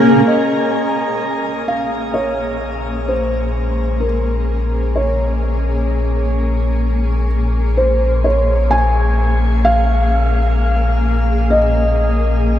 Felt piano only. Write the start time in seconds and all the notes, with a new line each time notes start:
0.27 D#5
1.68 F5
2.14 C#5
3.08 C5
4.00 A#4
4.96 C#5
7.77 C5
8.24 C#5
8.71 G#5
9.65 F5
11.50 D#5